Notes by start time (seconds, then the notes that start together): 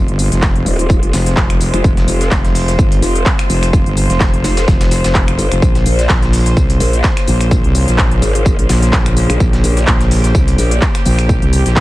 Already playing: C3 G#3 F4 C5
0.08 G1, closed hi-hat
0.19 open hi-hat, tambourine, shaker
0.32 F1, snare, closed hi-hat, shaker
0.42 kick, snare, clap, tambourine, shaker
0.56 closed hi-hat
0.66 D#1, open hi-hat, tambourine, shaker
0.79 closed hi-hat, shaker
0.90 kick, tambourine, shaker
1.03 F1, closed hi-hat
1.13 F1, snare, open hi-hat, tambourine, shaker
1.26 snare, closed hi-hat, shaker
1.37 F1, kick, snare, clap, tambourine, shaker
1.50 finger snap, closed hi-hat
1.61 open hi-hat, tambourine, shaker
1.74 F1, finger snap, closed hi-hat, shaker
1.84 F1, kick, tambourine, shaker
1.97 snare, closed hi-hat
2.08 F1, open hi-hat, tambourine, shaker
2.21 snare, closed hi-hat, shaker
2.31 F1, kick, snare, clap, tambourine, shaker
2.45 snare, closed hi-hat
2.55 open hi-hat, shaker
2.68 snare, closed hi-hat, shaker
2.79 G1, kick, tambourine, shaker
2.92 closed hi-hat
3.02 F1, snare, open hi-hat, tambourine, shaker
3.16 closed hi-hat, shaker
3.26 kick, snare, clap, tambourine, shaker
3.39 finger snap, snare, closed hi-hat
3.50 F1, open hi-hat, tambourine, shaker
3.63 finger snap, closed hi-hat, shaker
3.73 kick, tambourine, shaker
3.86 G1, closed hi-hat
3.97 open hi-hat, tambourine, shaker
4.10 F1, snare, closed hi-hat, shaker
4.20 kick, snare, clap, tambourine, shaker
4.34 closed hi-hat
4.44 F1, snare, open hi-hat, tambourine, shaker
4.57 snare, closed hi-hat, tambourine, shaker
4.68 F1, kick, snare, tambourine, shaker
4.81 snare, closed hi-hat, tambourine
4.91 snare, open hi-hat, tambourine, shaker
5.04 F1, snare, closed hi-hat, tambourine, shaker
5.15 kick, snare, clap, tambourine, shaker
5.28 finger snap, closed hi-hat
5.39 G1, open hi-hat, tambourine, shaker
5.52 F1, finger snap, closed hi-hat, shaker
5.62 A#1 C#3 A#3, kick, tambourine, shaker
5.75 snare, closed hi-hat
5.86 A#1, open hi-hat, tambourine, shaker
5.99 snare, closed hi-hat, shaker
6.09 A#1, kick, snare, clap, tambourine, shaker
6.22 snare, closed hi-hat
6.33 open hi-hat, shaker
6.46 snare, closed hi-hat, shaker
6.57 C2, kick, tambourine, shaker
6.70 closed hi-hat
6.80 A#1, snare, open hi-hat, tambourine, shaker
6.93 closed hi-hat, shaker
7.04 kick, snare, clap, tambourine, shaker
7.17 finger snap, snare, closed hi-hat
7.28 A#1, open hi-hat, tambourine, shaker
7.41 finger snap, closed hi-hat, shaker
7.51 kick, tambourine, shaker
7.64 C2, closed hi-hat
7.75 open hi-hat, tambourine, shaker
7.88 A#1, snare, closed hi-hat, shaker
7.98 kick, snare, clap, tambourine, shaker
8.11 closed hi-hat
8.22 G#1, open hi-hat, tambourine, shaker
8.35 closed hi-hat, shaker
8.46 kick, tambourine, shaker
8.59 A#1, closed hi-hat
8.69 A#1, snare, open hi-hat, tambourine, shaker
8.82 snare, closed hi-hat, shaker
8.93 A#1, kick, snare, clap, tambourine, shaker
9.06 finger snap, closed hi-hat
9.17 open hi-hat, tambourine, shaker
9.30 A#1, finger snap, closed hi-hat, shaker
9.40 A#1 G4, kick, tambourine, shaker
9.53 snare, closed hi-hat
9.64 A#1, open hi-hat, tambourine, shaker
9.77 snare, closed hi-hat, shaker
9.87 A#1, kick, snare, clap, tambourine, shaker
10.01 snare, closed hi-hat
10.11 open hi-hat, shaker
10.24 snare, closed hi-hat, shaker
10.35 C2, kick, tambourine, shaker
10.48 closed hi-hat
10.58 A#1, snare, open hi-hat, tambourine, shaker
10.71 closed hi-hat, shaker
10.82 kick, snare, clap, tambourine, shaker
10.95 finger snap, snare, closed hi-hat
11.06 A#1, open hi-hat, tambourine, shaker
11.19 finger snap, closed hi-hat, shaker
11.29 kick, tambourine, shaker
11.42 C2, closed hi-hat
11.53 open hi-hat, tambourine, shaker
11.66 A#1, snare, closed hi-hat, shaker
11.76 kick, snare, clap, tambourine, shaker